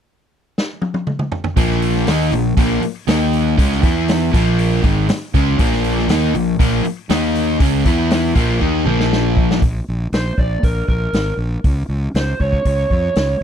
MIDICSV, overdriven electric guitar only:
0, 0, Header, 1, 3, 480
1, 0, Start_track
1, 0, Tempo, 503778
1, 1500, Time_signature, 4, 2, 24, 8
1, 12798, End_track
2, 0, Start_track
2, 0, Title_t, "Overdriven electric guitar"
2, 0, Program_c, 0, 29
2, 1491, Note_on_c, 0, 46, 81
2, 1493, Note_on_c, 0, 53, 91
2, 1498, Note_on_c, 0, 58, 96
2, 1967, Note_off_c, 0, 46, 0
2, 1968, Note_off_c, 0, 53, 0
2, 1968, Note_off_c, 0, 58, 0
2, 1975, Note_on_c, 0, 51, 93
2, 1980, Note_on_c, 0, 58, 89
2, 1980, Note_on_c, 0, 63, 93
2, 2207, Note_off_c, 0, 51, 0
2, 2210, Note_off_c, 0, 58, 0
2, 2211, Note_on_c, 0, 46, 51
2, 2212, Note_off_c, 0, 63, 0
2, 2214, Note_on_c, 0, 53, 68
2, 2406, Note_off_c, 0, 46, 0
2, 2408, Note_off_c, 0, 53, 0
2, 2447, Note_on_c, 0, 46, 80
2, 2453, Note_on_c, 0, 53, 85
2, 2455, Note_on_c, 0, 58, 85
2, 2677, Note_off_c, 0, 46, 0
2, 2687, Note_off_c, 0, 53, 0
2, 2689, Note_off_c, 0, 58, 0
2, 2927, Note_on_c, 0, 51, 77
2, 2930, Note_on_c, 0, 58, 85
2, 2932, Note_on_c, 0, 63, 89
2, 3399, Note_off_c, 0, 51, 0
2, 3402, Note_on_c, 0, 49, 82
2, 3404, Note_off_c, 0, 58, 0
2, 3404, Note_off_c, 0, 63, 0
2, 3408, Note_on_c, 0, 61, 87
2, 3410, Note_on_c, 0, 56, 85
2, 3648, Note_off_c, 0, 49, 0
2, 3648, Note_on_c, 0, 52, 78
2, 3652, Note_off_c, 0, 56, 0
2, 3652, Note_on_c, 0, 59, 92
2, 3654, Note_off_c, 0, 61, 0
2, 3654, Note_on_c, 0, 64, 94
2, 4111, Note_off_c, 0, 52, 0
2, 4114, Note_on_c, 0, 46, 85
2, 4117, Note_off_c, 0, 59, 0
2, 4121, Note_on_c, 0, 53, 85
2, 4124, Note_off_c, 0, 64, 0
2, 4128, Note_on_c, 0, 58, 93
2, 4592, Note_off_c, 0, 46, 0
2, 4595, Note_on_c, 0, 44, 99
2, 4596, Note_on_c, 0, 51, 86
2, 4598, Note_off_c, 0, 53, 0
2, 4602, Note_off_c, 0, 58, 0
2, 4605, Note_on_c, 0, 56, 101
2, 4835, Note_off_c, 0, 44, 0
2, 4836, Note_off_c, 0, 51, 0
2, 4840, Note_off_c, 0, 56, 0
2, 5089, Note_on_c, 0, 49, 83
2, 5093, Note_on_c, 0, 56, 89
2, 5095, Note_on_c, 0, 61, 89
2, 5322, Note_off_c, 0, 49, 0
2, 5324, Note_off_c, 0, 56, 0
2, 5325, Note_off_c, 0, 61, 0
2, 5329, Note_on_c, 0, 46, 90
2, 5330, Note_on_c, 0, 53, 81
2, 5335, Note_on_c, 0, 58, 105
2, 5801, Note_off_c, 0, 46, 0
2, 5802, Note_off_c, 0, 53, 0
2, 5804, Note_off_c, 0, 58, 0
2, 5812, Note_on_c, 0, 51, 90
2, 5816, Note_on_c, 0, 58, 101
2, 5818, Note_on_c, 0, 63, 97
2, 6040, Note_off_c, 0, 51, 0
2, 6044, Note_off_c, 0, 58, 0
2, 6044, Note_on_c, 0, 46, 61
2, 6045, Note_off_c, 0, 63, 0
2, 6048, Note_on_c, 0, 53, 63
2, 6237, Note_off_c, 0, 46, 0
2, 6240, Note_off_c, 0, 53, 0
2, 6281, Note_on_c, 0, 46, 78
2, 6286, Note_on_c, 0, 58, 82
2, 6288, Note_on_c, 0, 53, 85
2, 6507, Note_off_c, 0, 46, 0
2, 6519, Note_off_c, 0, 58, 0
2, 6520, Note_off_c, 0, 53, 0
2, 6760, Note_on_c, 0, 51, 82
2, 6763, Note_on_c, 0, 58, 88
2, 6767, Note_on_c, 0, 63, 96
2, 7235, Note_off_c, 0, 51, 0
2, 7236, Note_off_c, 0, 58, 0
2, 7238, Note_off_c, 0, 63, 0
2, 7244, Note_on_c, 0, 49, 93
2, 7244, Note_on_c, 0, 56, 91
2, 7251, Note_on_c, 0, 61, 99
2, 7477, Note_off_c, 0, 49, 0
2, 7477, Note_off_c, 0, 56, 0
2, 7481, Note_off_c, 0, 61, 0
2, 7491, Note_on_c, 0, 52, 82
2, 7493, Note_on_c, 0, 59, 84
2, 7496, Note_on_c, 0, 64, 95
2, 7955, Note_off_c, 0, 52, 0
2, 7959, Note_off_c, 0, 59, 0
2, 7959, Note_on_c, 0, 46, 79
2, 7961, Note_off_c, 0, 64, 0
2, 7962, Note_on_c, 0, 53, 86
2, 7965, Note_on_c, 0, 58, 94
2, 8195, Note_off_c, 0, 46, 0
2, 8196, Note_off_c, 0, 53, 0
2, 8198, Note_off_c, 0, 58, 0
2, 8208, Note_on_c, 0, 51, 73
2, 8212, Note_on_c, 0, 58, 80
2, 8220, Note_on_c, 0, 63, 84
2, 8434, Note_off_c, 0, 58, 0
2, 8435, Note_off_c, 0, 51, 0
2, 8439, Note_on_c, 0, 46, 89
2, 8441, Note_off_c, 0, 63, 0
2, 8441, Note_on_c, 0, 53, 95
2, 8445, Note_on_c, 0, 58, 102
2, 9155, Note_off_c, 0, 46, 0
2, 9157, Note_off_c, 0, 53, 0
2, 9159, Note_off_c, 0, 58, 0
2, 12798, End_track
3, 0, Start_track
3, 0, Title_t, "Muted overdriven electric guitar strokes"
3, 2688, Note_on_c, 9, 29, 54
3, 2783, Note_off_c, 9, 29, 0
3, 4846, Note_on_c, 9, 29, 57
3, 4941, Note_off_c, 9, 29, 0
3, 6518, Note_on_c, 9, 29, 58
3, 6614, Note_off_c, 9, 29, 0
3, 12798, End_track
0, 0, End_of_file